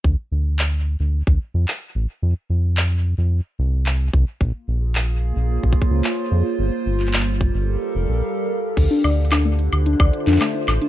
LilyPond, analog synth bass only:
\new Staff \with { instrumentName = "Analog synth bass" } { \clef bass \time 4/4 \key g \minor \tempo 4 = 110 d,16 r16 d,4~ d,16 d,8 d,16 r16 f,16 r8 a,,16 r16 | f,16 r16 f,4~ f,16 f,8 r16 c,4 c,16 r16 | bes,,16 r16 bes,,4~ bes,,16 bes,,8 bes,,16 r16 des,16 r8 f,16 r16 | g,,16 r16 g,,4~ g,,16 g,,8 r16 f,,16 bes,,16 r4 |
d,16 r16 d,4~ d,16 d,8 d,16 r16 f,16 r8 a,,16 r16 | }